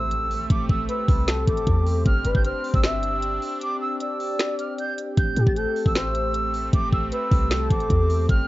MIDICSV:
0, 0, Header, 1, 7, 480
1, 0, Start_track
1, 0, Key_signature, 0, "minor"
1, 0, Tempo, 389610
1, 614, Time_signature, 4, 2, 24, 8
1, 10441, End_track
2, 0, Start_track
2, 0, Title_t, "Flute"
2, 0, Program_c, 0, 73
2, 0, Note_on_c, 0, 88, 91
2, 565, Note_off_c, 0, 88, 0
2, 618, Note_on_c, 0, 86, 103
2, 799, Note_off_c, 0, 86, 0
2, 853, Note_on_c, 0, 88, 87
2, 1035, Note_off_c, 0, 88, 0
2, 1097, Note_on_c, 0, 88, 85
2, 1772, Note_off_c, 0, 88, 0
2, 1814, Note_on_c, 0, 86, 84
2, 2491, Note_off_c, 0, 86, 0
2, 2534, Note_on_c, 0, 89, 114
2, 2872, Note_off_c, 0, 89, 0
2, 2895, Note_on_c, 0, 91, 91
2, 2986, Note_off_c, 0, 91, 0
2, 3014, Note_on_c, 0, 89, 90
2, 3352, Note_off_c, 0, 89, 0
2, 3373, Note_on_c, 0, 88, 84
2, 3464, Note_off_c, 0, 88, 0
2, 3493, Note_on_c, 0, 88, 90
2, 4404, Note_off_c, 0, 88, 0
2, 4455, Note_on_c, 0, 86, 108
2, 4637, Note_off_c, 0, 86, 0
2, 4690, Note_on_c, 0, 88, 84
2, 4874, Note_off_c, 0, 88, 0
2, 4934, Note_on_c, 0, 88, 85
2, 5611, Note_off_c, 0, 88, 0
2, 5652, Note_on_c, 0, 89, 74
2, 5835, Note_off_c, 0, 89, 0
2, 5895, Note_on_c, 0, 91, 91
2, 6077, Note_off_c, 0, 91, 0
2, 6374, Note_on_c, 0, 91, 104
2, 6713, Note_off_c, 0, 91, 0
2, 6737, Note_on_c, 0, 93, 77
2, 6827, Note_off_c, 0, 93, 0
2, 6851, Note_on_c, 0, 91, 88
2, 7191, Note_off_c, 0, 91, 0
2, 7215, Note_on_c, 0, 88, 81
2, 7306, Note_off_c, 0, 88, 0
2, 7336, Note_on_c, 0, 88, 89
2, 8245, Note_off_c, 0, 88, 0
2, 8297, Note_on_c, 0, 86, 105
2, 8479, Note_off_c, 0, 86, 0
2, 8532, Note_on_c, 0, 88, 86
2, 8715, Note_off_c, 0, 88, 0
2, 8776, Note_on_c, 0, 88, 83
2, 9452, Note_off_c, 0, 88, 0
2, 9495, Note_on_c, 0, 86, 82
2, 10171, Note_off_c, 0, 86, 0
2, 10214, Note_on_c, 0, 89, 112
2, 10441, Note_off_c, 0, 89, 0
2, 10441, End_track
3, 0, Start_track
3, 0, Title_t, "Soft synth lead"
3, 0, Program_c, 1, 80
3, 1091, Note_on_c, 1, 71, 92
3, 1543, Note_off_c, 1, 71, 0
3, 1571, Note_on_c, 1, 69, 106
3, 2483, Note_off_c, 1, 69, 0
3, 2776, Note_on_c, 1, 71, 78
3, 3003, Note_off_c, 1, 71, 0
3, 3013, Note_on_c, 1, 72, 90
3, 3465, Note_off_c, 1, 72, 0
3, 3494, Note_on_c, 1, 76, 96
3, 3945, Note_off_c, 1, 76, 0
3, 4933, Note_on_c, 1, 74, 97
3, 6324, Note_off_c, 1, 74, 0
3, 6616, Note_on_c, 1, 67, 85
3, 6843, Note_off_c, 1, 67, 0
3, 6855, Note_on_c, 1, 69, 84
3, 7306, Note_off_c, 1, 69, 0
3, 7338, Note_on_c, 1, 72, 96
3, 7787, Note_off_c, 1, 72, 0
3, 8770, Note_on_c, 1, 71, 94
3, 9223, Note_off_c, 1, 71, 0
3, 9252, Note_on_c, 1, 69, 102
3, 10164, Note_off_c, 1, 69, 0
3, 10441, End_track
4, 0, Start_track
4, 0, Title_t, "Analog synth pad"
4, 0, Program_c, 2, 89
4, 0, Note_on_c, 2, 57, 85
4, 0, Note_on_c, 2, 60, 80
4, 0, Note_on_c, 2, 67, 93
4, 2495, Note_off_c, 2, 57, 0
4, 2533, Note_on_c, 2, 62, 79
4, 6324, Note_off_c, 2, 60, 0
4, 6335, Note_off_c, 2, 62, 0
4, 6374, Note_on_c, 2, 57, 83
4, 6374, Note_on_c, 2, 60, 78
4, 10165, Note_off_c, 2, 67, 0
4, 10176, Note_off_c, 2, 57, 0
4, 10215, Note_on_c, 2, 62, 77
4, 10215, Note_on_c, 2, 67, 100
4, 10441, Note_off_c, 2, 60, 0
4, 10441, Note_off_c, 2, 62, 0
4, 10441, Note_off_c, 2, 67, 0
4, 10441, End_track
5, 0, Start_track
5, 0, Title_t, "808-style bass"
5, 0, Program_c, 3, 38
5, 0, Note_on_c, 3, 33, 106
5, 571, Note_off_c, 3, 33, 0
5, 614, Note_on_c, 3, 33, 110
5, 845, Note_off_c, 3, 33, 0
5, 853, Note_on_c, 3, 33, 106
5, 1084, Note_off_c, 3, 33, 0
5, 1334, Note_on_c, 3, 36, 103
5, 1795, Note_off_c, 3, 36, 0
5, 1814, Note_on_c, 3, 33, 108
5, 2044, Note_off_c, 3, 33, 0
5, 2054, Note_on_c, 3, 40, 109
5, 2515, Note_off_c, 3, 40, 0
5, 2534, Note_on_c, 3, 31, 108
5, 2764, Note_off_c, 3, 31, 0
5, 2774, Note_on_c, 3, 31, 106
5, 2889, Note_off_c, 3, 31, 0
5, 2894, Note_on_c, 3, 31, 103
5, 3125, Note_off_c, 3, 31, 0
5, 3374, Note_on_c, 3, 31, 109
5, 4181, Note_off_c, 3, 31, 0
5, 6374, Note_on_c, 3, 33, 108
5, 6604, Note_off_c, 3, 33, 0
5, 6614, Note_on_c, 3, 45, 108
5, 6729, Note_off_c, 3, 45, 0
5, 6734, Note_on_c, 3, 33, 105
5, 6965, Note_off_c, 3, 33, 0
5, 7214, Note_on_c, 3, 33, 103
5, 8251, Note_off_c, 3, 33, 0
5, 8294, Note_on_c, 3, 33, 109
5, 8524, Note_off_c, 3, 33, 0
5, 8533, Note_on_c, 3, 33, 107
5, 8764, Note_off_c, 3, 33, 0
5, 9014, Note_on_c, 3, 36, 106
5, 9475, Note_off_c, 3, 36, 0
5, 9493, Note_on_c, 3, 33, 109
5, 9724, Note_off_c, 3, 33, 0
5, 9734, Note_on_c, 3, 40, 108
5, 10195, Note_off_c, 3, 40, 0
5, 10214, Note_on_c, 3, 31, 111
5, 10441, Note_off_c, 3, 31, 0
5, 10441, End_track
6, 0, Start_track
6, 0, Title_t, "Impact"
6, 0, Program_c, 4, 103
6, 0, Note_on_c, 4, 60, 88
6, 614, Note_off_c, 4, 60, 0
6, 10441, End_track
7, 0, Start_track
7, 0, Title_t, "Drums"
7, 133, Note_on_c, 9, 42, 77
7, 257, Note_off_c, 9, 42, 0
7, 376, Note_on_c, 9, 46, 61
7, 500, Note_off_c, 9, 46, 0
7, 614, Note_on_c, 9, 36, 115
7, 614, Note_on_c, 9, 42, 84
7, 737, Note_off_c, 9, 36, 0
7, 737, Note_off_c, 9, 42, 0
7, 853, Note_on_c, 9, 36, 98
7, 976, Note_off_c, 9, 36, 0
7, 1095, Note_on_c, 9, 42, 74
7, 1218, Note_off_c, 9, 42, 0
7, 1334, Note_on_c, 9, 36, 93
7, 1336, Note_on_c, 9, 46, 51
7, 1458, Note_off_c, 9, 36, 0
7, 1459, Note_off_c, 9, 46, 0
7, 1573, Note_on_c, 9, 38, 127
7, 1576, Note_on_c, 9, 42, 85
7, 1585, Note_on_c, 9, 26, 97
7, 1696, Note_off_c, 9, 38, 0
7, 1699, Note_off_c, 9, 42, 0
7, 1708, Note_off_c, 9, 26, 0
7, 1813, Note_on_c, 9, 36, 102
7, 1814, Note_on_c, 9, 42, 84
7, 1934, Note_off_c, 9, 42, 0
7, 1934, Note_on_c, 9, 42, 46
7, 1937, Note_off_c, 9, 36, 0
7, 2053, Note_off_c, 9, 42, 0
7, 2053, Note_on_c, 9, 36, 94
7, 2053, Note_on_c, 9, 42, 69
7, 2176, Note_off_c, 9, 42, 0
7, 2177, Note_off_c, 9, 36, 0
7, 2296, Note_on_c, 9, 46, 62
7, 2419, Note_off_c, 9, 46, 0
7, 2533, Note_on_c, 9, 42, 80
7, 2534, Note_on_c, 9, 36, 116
7, 2657, Note_off_c, 9, 36, 0
7, 2657, Note_off_c, 9, 42, 0
7, 2769, Note_on_c, 9, 42, 91
7, 2892, Note_off_c, 9, 42, 0
7, 2894, Note_on_c, 9, 36, 95
7, 3015, Note_on_c, 9, 42, 67
7, 3018, Note_off_c, 9, 36, 0
7, 3138, Note_off_c, 9, 42, 0
7, 3256, Note_on_c, 9, 46, 50
7, 3374, Note_on_c, 9, 36, 94
7, 3380, Note_off_c, 9, 46, 0
7, 3494, Note_on_c, 9, 38, 123
7, 3497, Note_on_c, 9, 42, 86
7, 3498, Note_off_c, 9, 36, 0
7, 3506, Note_on_c, 9, 26, 97
7, 3617, Note_off_c, 9, 38, 0
7, 3620, Note_off_c, 9, 42, 0
7, 3629, Note_off_c, 9, 26, 0
7, 3734, Note_on_c, 9, 42, 78
7, 3857, Note_off_c, 9, 42, 0
7, 3973, Note_on_c, 9, 42, 73
7, 4096, Note_off_c, 9, 42, 0
7, 4216, Note_on_c, 9, 46, 63
7, 4340, Note_off_c, 9, 46, 0
7, 4454, Note_on_c, 9, 42, 81
7, 4577, Note_off_c, 9, 42, 0
7, 4935, Note_on_c, 9, 42, 74
7, 5058, Note_off_c, 9, 42, 0
7, 5177, Note_on_c, 9, 46, 52
7, 5300, Note_off_c, 9, 46, 0
7, 5414, Note_on_c, 9, 38, 124
7, 5416, Note_on_c, 9, 42, 83
7, 5426, Note_on_c, 9, 26, 101
7, 5537, Note_off_c, 9, 38, 0
7, 5540, Note_off_c, 9, 42, 0
7, 5549, Note_off_c, 9, 26, 0
7, 5653, Note_on_c, 9, 42, 82
7, 5776, Note_off_c, 9, 42, 0
7, 5893, Note_on_c, 9, 42, 68
7, 6016, Note_off_c, 9, 42, 0
7, 6136, Note_on_c, 9, 42, 89
7, 6259, Note_off_c, 9, 42, 0
7, 6373, Note_on_c, 9, 42, 81
7, 6374, Note_on_c, 9, 36, 114
7, 6497, Note_off_c, 9, 36, 0
7, 6497, Note_off_c, 9, 42, 0
7, 6609, Note_on_c, 9, 42, 88
7, 6732, Note_off_c, 9, 42, 0
7, 6734, Note_on_c, 9, 36, 99
7, 6854, Note_on_c, 9, 42, 70
7, 6858, Note_off_c, 9, 36, 0
7, 6977, Note_off_c, 9, 42, 0
7, 7096, Note_on_c, 9, 46, 50
7, 7214, Note_on_c, 9, 36, 97
7, 7219, Note_off_c, 9, 46, 0
7, 7333, Note_on_c, 9, 38, 123
7, 7336, Note_on_c, 9, 42, 80
7, 7338, Note_off_c, 9, 36, 0
7, 7345, Note_on_c, 9, 26, 100
7, 7457, Note_off_c, 9, 38, 0
7, 7459, Note_off_c, 9, 42, 0
7, 7469, Note_off_c, 9, 26, 0
7, 7573, Note_on_c, 9, 42, 80
7, 7697, Note_off_c, 9, 42, 0
7, 7813, Note_on_c, 9, 42, 74
7, 7936, Note_off_c, 9, 42, 0
7, 8056, Note_on_c, 9, 46, 62
7, 8179, Note_off_c, 9, 46, 0
7, 8293, Note_on_c, 9, 42, 84
7, 8294, Note_on_c, 9, 36, 110
7, 8416, Note_off_c, 9, 42, 0
7, 8417, Note_off_c, 9, 36, 0
7, 8533, Note_on_c, 9, 36, 96
7, 8656, Note_off_c, 9, 36, 0
7, 8774, Note_on_c, 9, 42, 76
7, 8897, Note_off_c, 9, 42, 0
7, 9014, Note_on_c, 9, 36, 94
7, 9016, Note_on_c, 9, 46, 50
7, 9138, Note_off_c, 9, 36, 0
7, 9139, Note_off_c, 9, 46, 0
7, 9254, Note_on_c, 9, 38, 124
7, 9256, Note_on_c, 9, 42, 83
7, 9266, Note_on_c, 9, 26, 101
7, 9377, Note_off_c, 9, 38, 0
7, 9379, Note_off_c, 9, 42, 0
7, 9389, Note_off_c, 9, 26, 0
7, 9493, Note_on_c, 9, 36, 107
7, 9494, Note_on_c, 9, 42, 79
7, 9614, Note_off_c, 9, 42, 0
7, 9614, Note_on_c, 9, 42, 46
7, 9617, Note_off_c, 9, 36, 0
7, 9733, Note_off_c, 9, 42, 0
7, 9733, Note_on_c, 9, 42, 68
7, 9734, Note_on_c, 9, 36, 92
7, 9856, Note_off_c, 9, 42, 0
7, 9857, Note_off_c, 9, 36, 0
7, 9976, Note_on_c, 9, 46, 62
7, 10100, Note_off_c, 9, 46, 0
7, 10214, Note_on_c, 9, 36, 113
7, 10214, Note_on_c, 9, 42, 85
7, 10337, Note_off_c, 9, 36, 0
7, 10337, Note_off_c, 9, 42, 0
7, 10441, End_track
0, 0, End_of_file